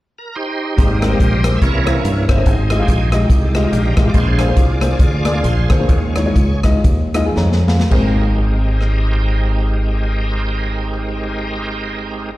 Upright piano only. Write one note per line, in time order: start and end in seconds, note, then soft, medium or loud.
0.78 1.41 G#2 medium
1.03 1.09 G#3 medium
1.03 1.09 C4 medium
1.03 1.09 G4 medium
1.03 1.09 A#4 medium
1.11 1.25 G#3 medium
1.11 1.25 C4 medium
1.11 1.25 G4 medium
1.11 1.25 A#4 medium
1.45 1.57 G#3 medium
1.45 1.57 C4 medium
1.45 1.57 G4 medium
1.45 1.57 A#4 medium
1.62 2.24 C3 medium
1.85 1.92 A#3 medium
1.85 1.92 C#4 medium
1.85 1.92 E4 medium
1.85 1.92 C5 medium
1.94 2.08 A#3 medium
1.94 2.08 C#4 medium
1.94 2.08 E4 soft
1.94 2.08 A#4 medium
2.28 2.34 A#3 medium
2.28 2.34 C#4 medium
2.28 2.34 E4 medium
2.28 2.34 C5 medium
2.37 2.46 A#3 medium
2.37 2.46 C#4 medium
2.37 2.46 E4 medium
2.37 2.46 C5 medium
2.46 3.09 G#2 medium
2.71 2.77 G#3 medium
2.71 2.77 F4 medium
2.71 2.77 G4 medium
2.71 2.77 D#5 medium
2.79 2.93 G#3 medium
2.79 2.93 F4 medium
2.79 2.93 G4 medium
2.79 2.93 F5 medium
3.13 3.25 G#3 medium
3.13 3.25 F4 medium
3.13 3.25 G4 medium
3.13 3.25 D#5 medium
3.55 3.61 G#3 medium
3.55 3.61 F4 medium
3.55 3.61 G4 medium
3.55 3.61 D#5 medium
3.64 3.77 G#3 medium
3.64 3.77 F4 medium
3.64 3.77 G4 medium
3.64 3.77 D#5 medium
3.97 4.03 G#3 medium
3.97 4.03 F4 medium
3.97 4.03 G4 medium
3.97 4.03 D#5 medium
4.05 4.14 G#3 medium
4.05 4.14 F4 medium
4.05 4.14 G4 medium
4.05 4.15 D#5 medium
4.14 4.78 A#2 medium
4.38 4.45 A#3 medium
4.38 4.45 D4 medium
4.38 4.45 G#4 medium
4.38 4.45 C5 medium
4.48 4.62 A#3 medium
4.48 4.62 D4 medium
4.48 4.62 G#4 medium
4.48 4.62 C5 medium
4.81 4.94 A#3 medium
4.81 4.94 D4 medium
4.81 4.94 G#4 medium
4.81 4.94 C5 medium
5.25 5.31 A#3 medium
5.25 5.32 D4 medium
5.25 5.32 G#4 medium
5.25 5.31 D5 medium
5.34 5.49 A#3 medium
5.34 5.48 D4 medium
5.34 5.49 G#4 medium
5.34 5.48 D5 medium
5.69 5.76 A#3 medium
5.69 5.76 D4 medium
5.69 5.76 G#4 medium
5.69 5.76 C5 medium
5.79 5.89 A#3 medium
5.79 5.89 D4 medium
5.79 5.89 G#4 medium
5.79 5.89 C5 medium
5.89 6.60 D#3 medium
6.16 6.23 G#3 medium
6.16 6.23 D#4 medium
6.16 6.23 F4 medium
6.16 6.23 C#5 medium
6.26 6.41 G#3 medium
6.26 6.41 D#4 medium
6.26 6.41 F4 medium
6.26 6.41 C#5 medium
6.64 6.78 G#3 medium
6.64 6.79 D#4 medium
6.64 6.79 F4 medium
6.64 6.79 D#5 medium
7.14 7.22 G#3 medium
7.14 7.22 D#4 medium
7.14 7.22 F4 medium
7.14 7.22 D#5 medium
7.25 7.43 G#3 medium
7.25 7.43 D#4 medium
7.25 7.43 F4 medium
7.25 7.37 G#4 medium
7.37 7.67 C#5 medium
7.37 7.67 A#5 medium
7.68 8.22 G#4 soft
7.68 8.22 F5 medium
7.90 12.32 G#1 medium
7.90 12.30 G#3 medium
7.90 12.31 C4 medium
7.90 12.32 G4 medium
7.94 12.34 A#4 medium